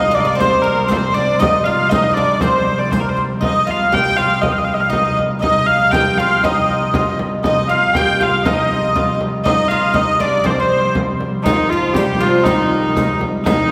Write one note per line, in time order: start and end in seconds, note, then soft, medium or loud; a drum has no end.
0.00 3.40 C3 medium
0.00 3.40 G3 medium
0.00 0.11 D#4 medium
0.00 0.13 D#5 medium
0.00 0.16 D#5 medium
0.11 0.24 D4 medium
0.11 0.21 D5 medium
0.15 0.26 D5 medium
0.15 frame drum medium
0.21 0.27 D#5 medium
0.25 0.35 D4 medium
0.25 0.33 D5 medium
0.25 0.40 D5 medium
0.35 0.64 C4 medium
0.40 0.65 C5 medium
0.40 0.87 C5 medium
0.40 riq medium
0.40 frame drum medium
0.62 0.91 A#3 medium
0.62 0.89 A#4 medium
0.88 1.14 C4 medium
0.88 0.98 F4 medium
0.88 0.97 A4 medium
0.88 1.14 C5 medium
0.88 1.43 C5 medium
0.88 riq medium
0.88 frame drum medium
1.14 1.39 D4 medium
1.14 1.40 D5 loud
1.14 frame drum medium
1.40 1.65 D#4 medium
1.40 1.65 D#5 loud
1.40 1.67 D#5 medium
1.40 riq medium
1.40 frame drum medium
1.64 1.91 F4 medium
1.64 1.89 F5 medium
1.64 1.93 F5 medium
1.89 2.17 D#4 medium
1.89 2.15 D#5 medium
1.89 riq medium
1.89 frame drum medium
2.14 2.41 D4 medium
2.14 2.41 D5 medium
2.14 frame drum medium
2.40 2.78 C4 medium
2.40 2.80 C5 medium
2.40 riq medium
2.40 frame drum medium
2.79 2.91 D5 medium
2.91 3.00 C5 medium
2.91 riq medium
2.91 frame drum medium
3.00 3.09 A#4 medium
3.09 3.18 C5 medium
3.17 riq soft
3.17 frame drum medium
3.41 7.43 C3 medium
3.41 7.43 G3 medium
3.41 3.67 D#4 medium
3.41 3.65 D#5 medium
3.41 frame drum medium
3.45 3.71 D#5 medium
3.66 3.92 F4 medium
3.66 3.95 F5 medium
3.66 frame drum soft
3.71 3.94 F5 medium
3.92 4.17 G4 medium
3.92 4.43 G5 medium
3.92 4.17 G5 loud
3.92 frame drum medium
4.17 4.41 F4 medium
4.17 4.42 F5 medium
4.17 frame drum medium
4.42 4.52 D#5 medium
4.42 frame drum medium
4.52 4.60 F5 medium
4.58 4.66 D#5 medium
4.64 4.74 F5 medium
4.64 frame drum soft
4.74 4.82 D#5 medium
4.80 4.90 F5 medium
4.90 5.15 D#4 medium
4.90 5.17 D#5 medium
4.90 5.16 D#5 medium
4.90 frame drum medium
5.19 frame drum medium
5.41 5.94 D#4 medium
5.41 5.67 D#5 medium
5.41 5.70 D#5 medium
5.41 frame drum medium
5.67 5.93 F5 medium
5.67 5.92 F5 medium
5.67 frame drum soft
5.91 6.17 G4 medium
5.91 6.01 C5 medium
5.91 5.99 D#5 medium
5.91 6.18 G5 loud
5.91 6.40 G5 medium
5.91 frame drum medium
6.18 6.44 F4 medium
6.18 6.45 F5 medium
6.18 frame drum medium
6.43 6.94 D#4 medium
6.43 6.51 C5 medium
6.43 7.15 D#5 medium
6.43 frame drum medium
6.94 7.18 F4 medium
6.94 frame drum medium
7.19 frame drum medium
7.44 11.43 C3 medium
7.44 11.43 G3 medium
7.44 7.69 D#4 medium
7.44 7.70 D#5 medium
7.44 7.71 D#5 medium
7.44 frame drum medium
7.69 7.92 F4 medium
7.69 7.92 F5 medium
7.69 7.96 F5 medium
7.69 frame drum soft
7.93 8.20 G4 medium
7.93 8.22 G5 medium
7.93 8.23 G5 loud
7.93 frame drum medium
8.20 8.46 F4 medium
8.20 8.46 F5 medium
8.20 8.47 F5 loud
8.20 frame drum medium
8.45 8.95 D#4 medium
8.45 9.20 D#5 medium
8.45 9.17 D#5 medium
8.45 frame drum medium
8.71 frame drum soft
8.96 9.18 F4 medium
8.96 frame drum medium
9.21 frame drum medium
9.44 9.70 D#4 medium
9.44 9.53 C5 medium
9.44 9.68 D#5 loud
9.44 9.92 D#5 loud
9.44 frame drum medium
9.68 9.93 F4 medium
9.68 9.95 F5 loud
9.68 frame drum soft
9.94 10.20 D#4 medium
9.94 10.21 D#5 medium
9.94 10.19 D#5 medium
9.94 frame drum medium
10.20 10.43 D4 medium
10.20 10.46 D5 medium
10.20 10.48 D5 medium
10.20 frame drum medium
10.44 10.58 C4 medium
10.44 10.52 C5 medium
10.44 10.58 C5 medium
10.44 frame drum medium
10.50 10.61 D5 medium
10.59 10.93 C4 medium
10.59 10.93 C5 medium
10.59 10.96 C5 medium
10.95 frame drum medium
11.21 frame drum medium
11.43 13.72 C3 medium
11.43 11.71 D#3 medium
11.43 13.72 G3 medium
11.43 11.70 D#4 loud
11.43 11.54 D#4 medium
11.43 riq medium
11.43 frame drum loud
11.52 11.59 F4 medium
11.58 11.71 D#4 medium
11.70 11.97 F3 medium
11.70 11.94 F4 medium
11.70 11.96 F4 medium
11.70 frame drum soft
11.94 12.19 G3 medium
11.94 12.21 G4 loud
11.94 12.01 G4 medium
11.94 riq medium
11.94 frame drum medium
12.00 12.08 F4 medium
12.06 12.21 G4 medium
12.19 12.46 F3 medium
12.19 12.42 F4 medium
12.19 12.46 F4 loud
12.19 frame drum medium
12.43 13.17 D#3 medium
12.43 12.51 C4 medium
12.43 13.16 D#4 medium
12.43 13.20 D#4 medium
12.43 riq medium
12.43 frame drum medium
12.72 frame drum soft
12.96 riq medium
12.96 frame drum medium
13.21 frame drum medium
13.44 13.70 D#3 medium
13.44 13.72 D#4 medium
13.44 13.71 D#4 medium
13.44 riq medium
13.44 frame drum loud